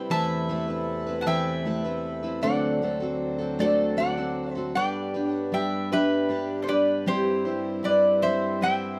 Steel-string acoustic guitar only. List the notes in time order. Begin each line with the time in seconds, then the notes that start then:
Already playing: G3 C4 E4 B4
0.10 E3 A3 C4 E4 B4
0.49 A3 C4 E4 B4
0.68 C4 E4 B4
1.07 C4 E4 B4
1.26 E3 A3 C4 E4 B4
1.65 A3 C4 E4 B4
1.84 C4 E4 B4
2.23 C4 E4 B4
2.42 D3 A3 C4 F#4 A4
2.82 A3 C4 F#4 A4
3.00 C4 F#4 A4
3.38 C4 F#4 A4
3.59 D3 A3 C4 F#4 A4
3.97 A3 C4 F#4 A4
4.17 C4 F#4 A4
4.55 C4 F#4 A4
4.75 G3 D4 G4 B4
5.14 D4 G4 B4
5.52 G3 D4 G4 B4
5.92 G3 D4 G4 B4
6.29 G3 D4 G4 B4
6.67 D4 G4 B4
7.06 G3 C4 E4 C5
7.45 C4 E4 C5
7.83 G3 C4 E4
8.22 G3 C4 E4 C5
8.61 G3 C4 E4 C5